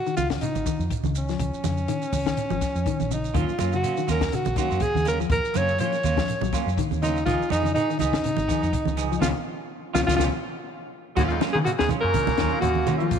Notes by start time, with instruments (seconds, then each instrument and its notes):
Already playing: alto saxophone F#4
0.07 clean electric guitar D#3, shekere
0.17 fingered electric bass C#2, alto saxophone F4, closed hi-hat, high conga, shekere
0.30 kick, snare, closed hi-hat, shekere
0.41 clean electric guitar C#3, alto saxophone D#4, muted fingered electric bass stroke, closed hi-hat, shekere
0.55 fingered electric bass G#1, closed hi-hat, high conga, shekere
0.66 clean electric guitar D#3, kick, closed hi-hat, shekere
0.79 fingered electric bass F2, shekere
0.90 kick, closed hi-hat, shekere
1.03 fingered electric bass C#2, clean electric guitar C#3, high conga, shekere
1.15 alto saxophone C#4, closed hi-hat, shekere
1.29 clean electric guitar F3, snare, shekere
1.40 fingered electric bass C#2, kick, closed hi-hat, shekere
1.54 shekere
1.64 fingered electric bass F2, clean electric guitar C#3, snare, closed hi-hat, high conga, shekere
1.77 shekere
1.88 clean electric guitar D#3, closed hi-hat, shekere
2.02 closed hi-hat, shekere
2.13 fingered electric bass C#2, kick, open hi-hat, high conga, shekere
2.26 clean electric guitar D#3, kick, snare, closed hi-hat, shekere
2.37 closed hi-hat, shekere
2.50 fingered electric bass G#1, clean electric guitar F3, high conga, shekere
2.61 kick, snare, closed hi-hat, shekere
2.75 fingered electric bass F2, shekere
2.86 clean electric guitar D#3, kick, closed hi-hat, shekere
3.00 fingered electric bass A#1, closed hi-hat, high conga, shekere
3.11 clean electric guitar C#3, alto saxophone D#4, closed hi-hat, high conga, shekere
3.24 closed hi-hat, shekere
3.34 fingered electric bass D#2, clean electric guitar D#3 F#3 A#3 C#4 F4, alto saxophone F4, kick, closed hi-hat, shekere
3.49 muted fingered electric bass stroke, shekere
3.58 fingered electric bass F#2, clean electric guitar F#3 A#3 C#4 F4, closed hi-hat, high conga, shekere
3.73 clean electric guitar C#3, alto saxophone F#4, closed hi-hat, shekere
3.82 clean electric guitar F#3 A#3 C#4 F4, closed hi-hat, shekere
3.97 clean electric guitar D#3, shekere
4.07 fingered electric bass D#2, clean electric guitar F#3 A#3 C#4 F4, alto saxophone A#4, snare, closed hi-hat, high conga, shekere
4.21 kick, snare, closed hi-hat, shekere
4.32 clean electric guitar C#3, alto saxophone F#4, muted fingered electric bass stroke, closed hi-hat, shekere
4.45 fingered electric bass A#1, closed hi-hat, high conga, shekere
4.56 clean electric guitar D#3 F#3 A#3 C#4 F4, alto saxophone F#4, kick, closed hi-hat, shekere
4.70 fingered electric bass F#2, clean electric guitar A#3 C#4 F4, shekere
4.80 alto saxophone G#4, kick, closed hi-hat, shekere
4.95 fingered electric bass D#2, clean electric guitar C#3, high conga, shekere
5.05 clean electric guitar F#3 A#3 C#4 F4, alto saxophone A#4, closed hi-hat, high conga, shekere
5.20 clean electric guitar F3, shekere
5.29 fingered electric bass D#2, alto saxophone A#4, kick, closed hi-hat, shekere
5.44 muted fingered electric bass stroke, shekere
5.53 fingered electric bass F#2, clean electric guitar C#3 F#3 A#3 C#4 F4, alto saxophone C#5, closed hi-hat, high conga, shekere
5.69 shekere
5.79 clean electric guitar F3 F#3 A#3 C#4 F4, alto saxophone C#5, closed hi-hat, shekere
5.92 closed hi-hat, shekere
6.03 fingered electric bass D#2, clean electric guitar F#3 A#3 C#4 F4, closed hi-hat, high conga, shekere
6.17 clean electric guitar F3, kick, snare, closed hi-hat, shekere
6.28 muted fingered electric bass stroke, closed hi-hat, shekere
6.41 fingered electric bass A#1, clean electric guitar F#3, high conga, shekere
6.53 clean electric guitar F#3 A#3 C#4 F4, kick, snare, closed hi-hat, shekere
6.66 fingered electric bass F#2, shekere
6.77 clean electric guitar D#3, kick, closed hi-hat, shekere
6.91 fingered electric bass D#2, closed hi-hat, high conga, shekere
7.02 clean electric guitar C#3 F#3 A#3 C#4 F4, alto saxophone D#4, closed hi-hat, high conga, shekere
7.16 closed hi-hat, shekere
7.26 fingered electric bass C#2, clean electric guitar D#3 F3 B3 D#4 G#4, alto saxophone F4, kick, snare, closed hi-hat, shekere
7.42 shekere
7.50 fingered electric bass F2, clean electric guitar F3 B3 D#4 G#4, alto saxophone D#4, closed hi-hat, high conga, shekere
7.63 clean electric guitar C#3, closed hi-hat, high conga, shekere
7.74 clean electric guitar B3 D#4 G#4, alto saxophone D#4, muted clean electric guitar stroke, closed hi-hat, shekere
7.90 clean electric guitar D#3, shekere
7.99 fingered electric bass C#2, clean electric guitar F3 B3 D#4 G#4, alto saxophone D#4, closed hi-hat, high conga, shekere
8.13 kick, snare, closed hi-hat, shekere
8.24 clean electric guitar C#3, muted fingered electric bass stroke, closed hi-hat, shekere
8.37 fingered electric bass G#1, closed hi-hat, high conga, shekere
8.48 clean electric guitar D#3 F3 B3 D#4 G#4, kick, closed hi-hat, shekere
8.62 fingered electric bass F2, clean electric guitar B3 D#4, shekere
8.73 kick, closed hi-hat, shekere
8.85 fingered electric bass C#2, clean electric guitar C#3, high conga, shekere
8.96 clean electric guitar F3 B3 D#4 G#4, closed hi-hat, shekere
9.12 clean electric guitar F3, shekere
9.20 fingered electric bass C#2, clean electric guitar B2 C#3 F3 B3 C#4 F4, alto saxophone F4, kick, snare, high conga, shekere
9.94 fingered electric bass C#2, clean electric guitar B2 C#3 F3 B3 C#4 F4, alto saxophone F4, kick, snare, high conga, shekere
10.07 fingered electric bass C#2, clean electric guitar B2 C#3 F3 B3 C#4 F4, alto saxophone F4, kick, snare, high conga, shekere
10.16 fingered electric bass C#2, clean electric guitar C#3 B3 C#4 F4, alto saxophone F4, kick, snare, high conga
10.20 clean electric guitar B2 F3, shekere
11.15 fingered electric bass D#2, baritone saxophone F#2, clean electric guitar D#3 F#3 A#3 C#4 F4, duduk A#3, alto saxophone F#4, kick, crash, shekere
11.29 baritone saxophone F2, duduk G#3, alto saxophone F4, closed hi-hat
11.40 clean electric guitar F#3 A#3 C#4 F4, snare, closed hi-hat, high conga, shekere
11.53 baritone saxophone G#2, clean electric guitar C#3, fingered electric bass D#3, duduk B3, alto saxophone G#4
11.64 baritone saxophone F#2, duduk A#3, alto saxophone F#4, closed hi-hat, shekere
11.78 fingered electric bass D#2, baritone saxophone G#2, clean electric guitar D#3, duduk B3, alto saxophone G#4, snare
11.89 clean electric guitar F#3 C#4 F4, closed hi-hat, high conga, low conga, shekere
12.01 fingered electric bass F#2, baritone saxophone A#2, duduk C#4, alto saxophone A#4
12.14 clean electric guitar C#3, kick, closed hi-hat, high conga, shekere
12.27 muted fingered electric bass stroke, kick, snare, closed hi-hat, high conga, low conga
12.37 fingered electric bass D#2, clean electric guitar D#3 F#3 A#3 C#4 F4, kick, snare, closed hi-hat, shekere
12.51 clean electric guitar A#3 C#4 F4
12.60 fingered electric bass D#2, baritone saxophone F#2, duduk A#3, alto saxophone F#4, closed hi-hat, high conga, shekere
12.75 high conga
12.86 fingered electric bass D#3, clean electric guitar F#3 A#3 C#4 F4, closed hi-hat, low conga, shekere
12.98 baritone saxophone F2, clean electric guitar F3, duduk A#3, alto saxophone F4, closed hi-hat
13.11 fingered electric bass D#2, kick, closed hi-hat, shekere